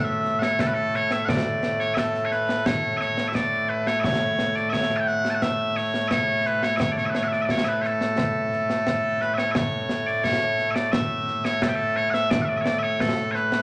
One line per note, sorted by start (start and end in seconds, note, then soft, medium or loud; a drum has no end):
0.00 13.62 A2 medium
0.00 13.62 A3 medium
0.04 0.39 E5 medium
0.25 snare soft
0.39 0.60 C#5 medium
0.39 0.43 F#5 medium
0.39 snare medium
0.59 0.67 A4 medium
0.59 concert bass drum medium
0.59 snare medium
0.67 0.74 B4 medium
0.74 0.95 A4 medium
0.94 1.12 C#5 medium
0.94 snare soft
1.11 1.25 E5 medium
1.11 snare medium
1.25 1.80 D5 medium
1.25 1.29 F#5 medium
1.25 concert bass drum medium
1.25 snare loud
1.63 snare medium
1.80 1.94 C#5 medium
1.80 snare soft
1.94 2.25 A4 medium
1.94 1.98 E5 medium
1.94 concert bass drum soft
1.94 snare medium
2.14 snare soft
2.25 2.32 C#5 medium
2.31 2.66 B4 loud
2.31 snare soft
2.49 snare medium
2.66 2.97 C#5 loud
2.66 concert bass drum medium
2.66 snare loud
2.97 3.01 E5 medium
2.97 snare soft
3.01 3.28 C#5 medium
3.18 snare medium
3.28 3.35 E5 medium
3.35 3.69 D5 loud
3.35 concert bass drum soft
3.35 snare medium
3.69 3.87 B4 medium
3.87 4.00 C#5 medium
3.87 snare medium
4.00 4.56 C#5 loud
4.00 4.04 E5 loud
4.00 concert bass drum medium
4.00 snare medium
4.39 snare medium
4.56 4.69 D5 medium
4.56 snare soft
4.69 4.96 C#5 loud
4.69 4.73 E5 loud
4.69 concert bass drum soft
4.69 snare medium
4.90 snare soft
4.96 5.07 G5 medium
4.96 5.00 A5 medium
5.07 5.30 F#5 loud
5.07 snare soft
5.25 snare medium
5.30 5.35 A5 medium
5.35 5.42 F#5 medium
5.42 5.76 E5 loud
5.42 concert bass drum medium
5.42 snare medium
5.76 6.08 C#5 loud
5.76 snare soft
5.94 snare medium
6.08 6.46 C#5 loud
6.08 6.11 E5 loud
6.08 concert bass drum soft
6.08 snare medium
6.46 6.63 B4 loud
6.46 snare soft
6.63 6.76 C#5 medium
6.63 snare medium
6.76 6.92 C#5 medium
6.76 6.80 E5 medium
6.76 concert bass drum medium
6.76 snare loud
6.92 6.98 D5 medium
6.98 7.06 C#5 medium
6.98 snare soft
7.06 7.10 E5 medium
7.10 7.15 B4 medium
7.15 7.23 C#5 loud
7.15 snare medium
7.23 7.28 F#5 medium
7.28 7.32 E5 medium
7.32 7.42 D5 medium
7.32 snare soft
7.42 7.51 D5 medium
7.42 7.45 E5 medium
7.49 7.65 C#5 loud
7.49 concert bass drum medium
7.49 snare medium
7.65 7.82 B4 medium
7.65 7.68 E5 medium
7.82 9.21 A4 medium
7.82 7.86 C#5 medium
7.82 snare soft
8.01 snare medium
8.18 concert bass drum medium
8.18 snare loud
8.53 snare soft
8.70 snare medium
8.87 concert bass drum soft
8.87 snare medium
9.21 9.34 B4 medium
9.21 snare soft
9.34 9.38 E5 medium
9.38 9.51 C#5 medium
9.38 snare medium
9.51 10.07 C#5 medium
9.51 9.55 E5 medium
9.51 concert bass drum medium
9.51 snare loud
9.89 snare medium
10.07 10.24 D5 medium
10.07 snare soft
10.24 10.71 C#5 loud
10.24 concert bass drum medium
10.24 snare loud
10.41 snare soft
10.58 snare soft
10.71 10.92 D5 medium
10.71 10.75 E5 medium
10.76 snare medium
10.92 11.45 E5 loud
10.92 concert bass drum medium
10.92 snare loud
11.28 snare soft
11.45 11.62 C#5 medium
11.45 snare medium
11.62 11.69 A4 medium
11.62 concert bass drum medium
11.62 snare medium
11.69 11.75 G4 medium
11.75 11.96 A4 medium
11.96 12.10 C#5 loud
11.96 snare soft
12.10 12.30 E5 loud
12.10 12.14 F#5 loud
12.10 snare medium
12.30 12.41 D5 medium
12.30 concert bass drum medium
12.30 snare loud
12.41 12.49 E5 medium
12.41 12.45 F#5 medium
12.49 12.57 D5 medium
12.57 12.61 E5 medium
12.61 12.65 C#5 medium
12.61 12.79 D5 loud
12.66 snare medium
12.79 12.83 E5 medium
12.83 13.00 C#5 medium
13.00 13.31 A4 medium
13.00 concert bass drum medium
13.00 snare loud
13.18 snare soft
13.31 13.62 B4 medium
13.31 13.35 C#5 medium
13.31 snare soft
13.52 snare medium